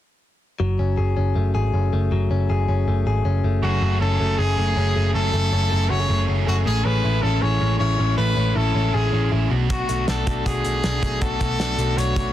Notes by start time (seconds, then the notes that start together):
0.60 F#1 F#3
0.79 F#1 C#4
0.97 F#1 G#4
1.17 F#1 C#4
1.35 F#1 A3
1.55 G#1 G#4
1.74 F#1 C#4
1.93 F#1 A3
2.12 F#1 F#3
2.30 F#1 C#4
2.50 F#1 G#4
2.68 F#1 C#4
2.88 F#1 A3
3.06 G#1 G#4
3.25 F#1 C#4
3.44 F#1 A3
3.62 F#1 F#2 C#3 F#3 A3 C#4 F#4 G#4
3.81 F#1 F#3 A3 C#4 G#4
3.99 F#1 F#3 A3 C#4 G#4 A4
4.19 F#1 F#3 A3 C#4 G#4
4.38 F#1 F#2 C#3 F#3 A3 C#4 G#4
4.57 F#1 F#3 A3 C#4 G#4
4.76 F#1 F#3 A3 C#4 G#4
4.95 F#1 F#3 A3 C#4 G#4
5.14 F#1 F#2 C#3 F#3 A3 C#4 G#4 A4
5.33 F#1 F#3 A3 C#4 G#4
5.52 F#1 F#3 A3 C#4 G#4
5.71 F#1 F#3 A3 C#4 G#4
5.89 F#1 F#2 C#3 F#3 A3 C#4 F#4 G#4 C#5
6.00 G#4
6.08 F#1 F#3 A3 C#4 G#4
6.27 F#1 F#3 A3 C#4 G#4
6.46 F#1 F#3 A3 C#4 F#4 G#4
6.65 A1 A2 E3 G#3 A3 C#4 E4 G#4
6.84 A1 G#3 C#4 E4 B4
7.04 A1 E3 G#3 C#4 E4
7.22 A1 G#3 C#4 E4 A4
7.41 A1 A2 E3 G#3 C#4 E4 G#4 C#5
7.60 A1 G#3 C#4 E4
7.79 A1 E3 G#3 C#4 E4 C#5
7.98 A1 G#3 C#4 E4
8.17 A1 A2 E3 G#3 A3 C#4 E4 B4
8.36 A1 G#3 C#4 E4
8.55 A1 E3 G#3 C#4 E4 A4
8.75 A1 G#3 C#4 E4
8.93 A1 A2 E3 G#3 C#4 E4 G#4
9.12 A1 G#3 C#4 E4
9.31 A1 E3 G#3 C#4 E4
9.50 B1 B2 A3 D4 F#4
9.69 B2 F#3 A3 D4 F#4, kick, closed hi-hat
9.88 B1 A3 D4 F#4, closed hi-hat
10.07 B1 F#3 A3 D4 F#4 A4, snare, closed hi-hat
10.26 B1 A3 D4 F#4, kick, closed hi-hat
10.46 B1 B2 F#3 A3 D4 F#4 G#4, kick, closed hi-hat
10.64 B1 A3 D4 F#4, closed hi-hat
10.83 B1 F#3 A3 D4 F#4, snare, closed hi-hat
11.02 B1 A3 D4 F#4, kick, closed hi-hat
11.21 B1 B2 F#3 A3 D4 F#4 A4, kick, closed hi-hat
11.40 B1 A3 D4 F#4, kick, closed hi-hat
11.58 B1 F#3 A3 D4 F#4, snare, closed hi-hat
11.78 B1 A3 D4 F#4, closed hi-hat
11.97 B1 B2 F#3 A3 D4 F#4 C#5, closed hi-hat
12.16 B1 A3 D4 F#4, kick, closed hi-hat